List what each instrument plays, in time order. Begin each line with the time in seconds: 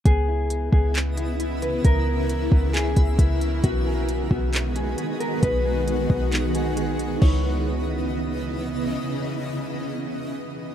0.05 808-style bass C#2, ambient pad C#3 E3 B3 E4, synth texture B3 E4 D#5, clean electric guitar B3 G#4, kick, closed hi-hat
0.28 clean electric guitar E4
0.50 closed hi-hat
0.72 808-style bass C#2, clean electric guitar B3 G#4, kick
0.95 clean electric guitar B3, clap, closed hi-hat
1.17 clean electric guitar E4, closed hi-hat
1.40 clean electric guitar E4, closed hi-hat
1.62 clean electric guitar B4, closed hi-hat
1.85 808-style bass C#2, clean electric guitar B3 A#4, ambient pad A#4, synth texture E5, kick, closed hi-hat
2.07 clean electric guitar E4
2.29 closed hi-hat
2.52 808-style bass C#2, clean electric guitar B3, kick
2.74 clean electric guitar B3 G#4, clap, closed hi-hat
2.96 808-style bass C#2, clean electric guitar E4, kick, closed hi-hat
3.19 808-style bass C#2, clean electric guitar E4, kick, closed hi-hat
3.41 closed hi-hat
3.64 808-style bass B1, ambient pad D#3 G#3 B3 F#4, clean electric guitar B3 F#4, synth texture G#4 D#5, kick, closed hi-hat
3.87 clean electric guitar G#4
4.09 closed hi-hat
4.31 808-style bass B1, clean electric guitar B3 F#4, kick
4.53 clean electric guitar B3, clap, closed hi-hat
4.76 clean electric guitar G#4, closed hi-hat
4.98 clean electric guitar G#4, closed hi-hat
5.20 clean electric guitar A#4, closed hi-hat
5.43 808-style bass B1, clean electric guitar B3 B4, synth texture F#4, kick, closed hi-hat
5.65 clean electric guitar G#4
5.88 closed hi-hat
6.10 808-style bass B1, clean electric guitar B3, kick
6.32 clean electric guitar B3, clap, closed hi-hat
6.55 clean electric guitar G#4, closed hi-hat
6.77 clean electric guitar G#4, closed hi-hat
6.99 closed hi-hat
7.16 clean electric guitar D#4
7.22 808-style bass C#2, ambient pad C#3 E3 B3 D#5, synth texture B3 E4 D#5, clean electric guitar E4 C#5, kick, crash
7.28 clean electric guitar B4